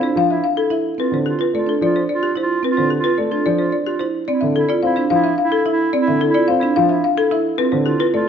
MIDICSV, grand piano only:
0, 0, Header, 1, 2, 480
1, 0, Start_track
1, 0, Tempo, 550459
1, 855, Time_signature, 3, 2, 24, 8
1, 7225, End_track
2, 0, Start_track
2, 0, Title_t, "Grand piano"
2, 0, Program_c, 0, 0
2, 137, Note_on_c, 0, 53, 72
2, 292, Note_off_c, 0, 53, 0
2, 974, Note_on_c, 0, 50, 55
2, 1131, Note_off_c, 0, 50, 0
2, 1338, Note_on_c, 0, 57, 53
2, 1492, Note_off_c, 0, 57, 0
2, 1581, Note_on_c, 0, 53, 71
2, 1733, Note_off_c, 0, 53, 0
2, 2423, Note_on_c, 0, 50, 56
2, 2574, Note_off_c, 0, 50, 0
2, 2774, Note_on_c, 0, 57, 56
2, 2931, Note_off_c, 0, 57, 0
2, 3018, Note_on_c, 0, 53, 72
2, 3172, Note_off_c, 0, 53, 0
2, 3856, Note_on_c, 0, 50, 62
2, 4011, Note_off_c, 0, 50, 0
2, 4214, Note_on_c, 0, 60, 58
2, 4371, Note_off_c, 0, 60, 0
2, 4453, Note_on_c, 0, 53, 77
2, 4610, Note_off_c, 0, 53, 0
2, 5301, Note_on_c, 0, 50, 63
2, 5453, Note_off_c, 0, 50, 0
2, 5660, Note_on_c, 0, 60, 63
2, 5813, Note_off_c, 0, 60, 0
2, 5904, Note_on_c, 0, 53, 78
2, 6054, Note_off_c, 0, 53, 0
2, 6736, Note_on_c, 0, 50, 64
2, 6891, Note_off_c, 0, 50, 0
2, 7094, Note_on_c, 0, 57, 68
2, 7225, Note_off_c, 0, 57, 0
2, 7225, End_track
0, 0, End_of_file